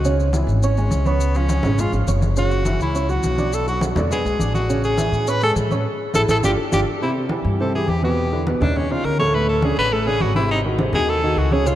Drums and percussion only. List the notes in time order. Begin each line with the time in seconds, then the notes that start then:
0.04 high conga, maracas
0.19 high conga, maracas
0.33 high conga, maracas
0.47 high conga, maracas
0.62 high conga, maracas
0.77 high conga, maracas
0.91 high conga, maracas
1.05 high conga, maracas
1.20 high conga, maracas
1.34 high conga, maracas
1.49 high conga, maracas
1.63 high conga, low conga, maracas
1.78 high conga, low conga, maracas
1.93 high conga, maracas
2.07 high conga, maracas
2.22 high conga, maracas
2.36 high conga, maracas
2.51 high conga, maracas
2.65 high conga, maracas
2.80 high conga, maracas
2.95 high conga, maracas
3.09 high conga, maracas
3.23 high conga, maracas
3.38 high conga, maracas
3.53 high conga, maracas
3.67 high conga, maracas
3.81 high conga, maracas
3.96 high conga, low conga, maracas
4.11 high conga, low conga, maracas
4.25 high conga, maracas
4.39 high conga, maracas
4.54 high conga, maracas
4.68 high conga, maracas
4.84 high conga, maracas
4.98 high conga, maracas
5.13 maracas
5.27 high conga, maracas
5.41 high conga, maracas
5.56 high conga, maracas
5.71 high conga, maracas
6.14 high conga, maracas
6.29 high conga, maracas
6.43 high conga, maracas
6.72 high conga, maracas
7.01 high conga
7.16 high conga
7.29 high conga
7.44 high conga
7.59 high conga
7.73 high conga
7.88 high conga
8.03 high conga
8.32 high conga
8.47 high conga
8.62 low conga
8.76 high conga, low conga
8.90 high conga
9.05 high conga
9.19 high conga
9.33 high conga
9.48 high conga
9.62 high conga
9.77 high conga
9.91 high conga
10.06 high conga
10.20 high conga
10.35 high conga
10.49 high conga
10.64 high conga
10.79 high conga
10.93 low conga
11.07 high conga
11.22 high conga
11.36 high conga
11.51 high conga
11.66 maracas